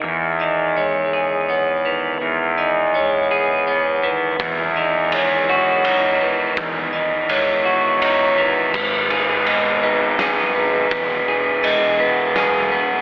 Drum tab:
CC |------|------|------|------|
RD |------|------|x-x-x-|x-x-x-|
SD |------|------|------|------|
BD |------|------|o-----|o-----|

CC |x-----|------|
RD |-xx-x-|x-x-x-|
SD |----o-|----o-|
BD |o-----|o-----|